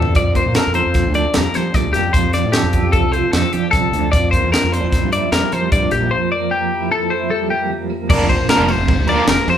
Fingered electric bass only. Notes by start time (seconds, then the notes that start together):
Already playing: E2
0.16 F2
0.46 A#2
0.67 F2
0.86 F2
1.07 D2
1.37 F2
1.56 F3
1.75 D2
1.96 F2
2.14 F2
2.44 A2
2.63 F2
2.83 F2
3.02 C2
3.33 F2
3.54 F3
3.74 C2
3.93 D2
4.13 F2
4.44 E2
4.64 F2
4.84 F2
5.03 G2
5.32 F2
5.53 F3
5.72 G2
5.92 A#1
8.10 F1
8.38 A#1
8.58 F1
8.77 F1
8.98 D2
9.28 F1
9.48 F2